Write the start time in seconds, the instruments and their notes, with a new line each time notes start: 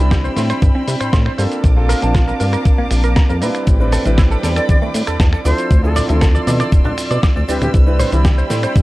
Already playing: grand piano G3, violin section C4 G5 B5 E6
0.00 analog synth bass C2, grand piano C4 D4 E4 B5
0.11 clean electric guitar G4, kick, snare, closed hi-hat, shaker
0.24 clean electric guitar C5, shaker
0.36 analog synth bass A2, clean electric guitar C5, snare, open hi-hat, shaker
0.50 clean electric guitar C5, finger snap, closed hi-hat, shaker
0.62 analog synth bass G2, kick, closed hi-hat, shaker
0.75 clean electric guitar C4
0.88 analog synth bass C3, open hi-hat, shaker
1.00 analog synth bass A2, clean electric guitar C5, finger snap, closed hi-hat, shaker
1.13 analog synth bass A2, clean electric guitar C6, kick, snare, closed hi-hat, shaker
1.26 clean electric guitar C5, finger snap
1.38 analog synth bass G2, grand piano A#3 C4 D4 F4 A4, clean electric guitar C5, open hi-hat, shaker
1.52 closed hi-hat, shaker
1.64 analog synth bass A#1, violin section A#3 F5 A5 D6, kick, closed hi-hat, shaker
1.76 grand piano A#3 C4 D4 F4 A4
1.89 clean electric guitar A#4, open hi-hat, shaker
2.01 analog synth bass A#1, grand piano A#3 C4 D4 F4 A5, closed hi-hat, shaker
2.15 clean electric guitar F4, kick, snare, closed hi-hat, shaker
2.28 clean electric guitar A#4, shaker
2.40 analog synth bass G2, clean electric guitar A#4, open hi-hat, shaker
2.53 clean electric guitar A#4, finger snap, closed hi-hat, shaker
2.65 kick, closed hi-hat, shaker
2.78 analog synth bass A#1, clean electric guitar A#3
2.91 analog synth bass A#1, finger snap, open hi-hat, shaker
3.04 clean electric guitar A#4, closed hi-hat, shaker
3.16 clean electric guitar A#5, kick, snare, closed hi-hat, shaker
3.29 analog synth bass F2, clean electric guitar A#4, shaker
3.41 analog synth bass A#2, grand piano G3 C4 D4 E4 B4, clean electric guitar A#4, open hi-hat, shaker
3.55 finger snap, closed hi-hat, shaker
3.66 analog synth bass A1, violin section C4 G5 B5 D6, kick, closed hi-hat, shaker
3.80 grand piano G3 C4 D4 E4 B4, shaker
3.92 clean electric guitar A4, open hi-hat, low conga, shaker
4.04 analog synth bass A1, grand piano G3 C4 D4 E4 B4, closed hi-hat, high conga, shaker
4.18 clean electric guitar E4, kick, snare, closed hi-hat, shaker
4.31 clean electric guitar A4, shaker
4.43 analog synth bass E2, clean electric guitar A4, snare, open hi-hat, shaker
4.56 clean electric guitar A4, flute D5, finger snap, closed hi-hat, shaker
4.69 analog synth bass E2, flute D5, kick, closed hi-hat, high conga, shaker
4.82 clean electric guitar A3, shaker
4.94 analog synth bass A2, open hi-hat, shaker
5.07 analog synth bass E2, clean electric guitar A4, finger snap, closed hi-hat, shaker
5.20 analog synth bass E2, clean electric guitar A5, kick, snare, closed hi-hat, shaker
5.33 clean electric guitar A4, finger snap, shaker
5.44 analog synth bass D2, grand piano F3 C4 D4 E4 A4, flute C5, violin section D5 C6 E6, clean electric guitar D5, open hi-hat, shaker
5.58 closed hi-hat, shaker
5.71 analog synth bass D2, kick, closed hi-hat, shaker
5.83 grand piano F3 C4 D4 E4 A4, flute A4, shaker
5.96 clean electric guitar D5, open hi-hat, low conga, shaker
6.08 analog synth bass D2, grand piano F3 C4 D4 E4 A4, closed hi-hat, high conga, shaker
6.21 clean electric guitar A4, kick, snare, closed hi-hat, shaker
6.35 clean electric guitar D5, shaker
6.47 analog synth bass B2, clean electric guitar D5, open hi-hat, high conga, shaker
6.60 clean electric guitar D5, finger snap, closed hi-hat, shaker
6.72 analog synth bass D1, kick, closed hi-hat, shaker
6.85 clean electric guitar D4, low conga, shaker
6.98 finger snap, open hi-hat, shaker
7.11 analog synth bass B2, clean electric guitar D5, closed hi-hat, shaker
7.23 clean electric guitar D6, kick, snare, closed hi-hat, shaker
7.36 analog synth bass D2, clean electric guitar D5, shaker
7.48 analog synth bass D2, grand piano G3 C4 D4 E4 B4, flute G4, clean electric guitar D5, open hi-hat, shaker
7.61 analog synth bass D2, flute G4, finger snap, closed hi-hat, low conga, shaker
7.74 analog synth bass C2, violin section C4 G5 B5, kick, closed hi-hat, shaker
7.86 grand piano G3 C4 D4 E4 B4, shaker
7.99 clean electric guitar C5, open hi-hat, low conga, shaker
8.11 analog synth bass C2, grand piano G3 C4 D4 E4 B5, closed hi-hat, high conga, shaker
8.24 clean electric guitar G4, kick, snare, closed hi-hat, shaker
8.38 clean electric guitar C5, shaker
8.50 analog synth bass A2, clean electric guitar C5, snare, open hi-hat, shaker
8.63 clean electric guitar C5, finger snap, closed hi-hat, shaker
8.76 analog synth bass G2, kick, closed hi-hat, high conga, shaker